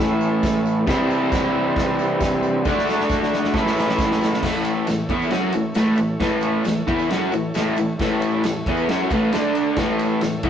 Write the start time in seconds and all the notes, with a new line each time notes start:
Already playing: A2 E3 A3 C#4 E4 A4 C#5
0.21 tambourine
0.43 kick, snare, tambourine, crash
0.66 tambourine
0.86 C3 E3 G3 C4 E4 G4 C5, kick, snare, tambourine, crash
0.90 E4
1.10 tambourine
1.32 kick, snare, tambourine, crash
1.76 kick, snare, crash
1.99 tambourine
2.20 kick, snare, tambourine, crash
2.43 tambourine
2.65 D3 A3 D4 F#4 A4 D5, kick, snare, tambourine
2.69 F#4
2.79 snare
2.87 snare, tambourine
3.00 snare
3.09 kick, snare, tambourine
3.22 snare
3.32 snare, tambourine
3.44 snare
3.51 A2 E3 E4 A4 C#5, kick, snare, tambourine
3.55 A3 C#4 E4
3.66 snare
3.77 snare, tambourine
3.89 snare
3.98 kick, snare, tambourine
4.11 snare
4.21 snare, tambourine
4.33 snare
4.41 A2 E3 A3 E4 A4 C#5, kick, snare, crash
4.54 tambourine
4.65 ride, tambourine
4.87 A2 E3, snare, ride, tambourine
5.09 E3 B3 E4, kick, ride, tambourine
5.22 tambourine
5.30 F#3 C#4 F#4, snare, ride
5.52 A2 E3, ride, tambourine
5.74 A2 E3 A3, snare, ride, tambourine
5.96 A2 E3, ride, tambourine
6.08 tambourine
6.20 A2 E3 A3, kick, snare, ride
6.30 tambourine
6.41 ride, tambourine
6.64 A2 E3, snare, ride, tambourine
6.87 E3 B3 E4, kick, ride, tambourine
6.99 tambourine
7.10 F#3 C#4 F#4, snare, ride
7.32 A2 E3, ride, tambourine
7.54 A2 E3 A3, snare, ride, tambourine
7.76 A2 E3, ride, tambourine
7.97 A2 E3 E4 A4 C#5, kick, snare, crash
8.02 A3
8.11 tambourine
8.22 ride, tambourine
8.44 A2 E3, snare, ride, tambourine
8.66 E3 B3 E4, kick, ride, tambourine
8.77 tambourine
8.89 F#3 C#4 F#4, snare, ride
9.10 A2 E3 A3, kick, ride, tambourine
9.32 D3 A3 D4 A4 D5, snare, ride, tambourine
9.55 ride, tambourine
9.66 tambourine
9.76 A2 E3 A3 E4 A4, kick, snare, ride, tambourine
9.81 C#5
9.90 tambourine
9.99 ride, tambourine
10.21 A2 E3, snare, ride, tambourine
10.43 E3 B3 E4, kick, ride